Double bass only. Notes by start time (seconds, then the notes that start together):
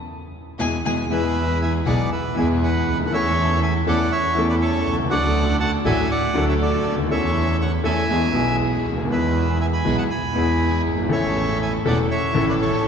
0.60 E2
0.85 E2
1.10 E2
1.86 B1
2.37 E2
2.88 D2
3.13 E2
3.87 E2
4.37 E2
4.87 C2
5.11 D2
5.85 A1
6.34 D2
6.84 D2
7.09 E2
7.84 E2
8.09 E2
8.35 B1
8.86 D2
9.12 E2
9.86 B1
10.36 E2
10.86 G1
11.11 A1
11.86 E1
12.35 A1
12.84 A1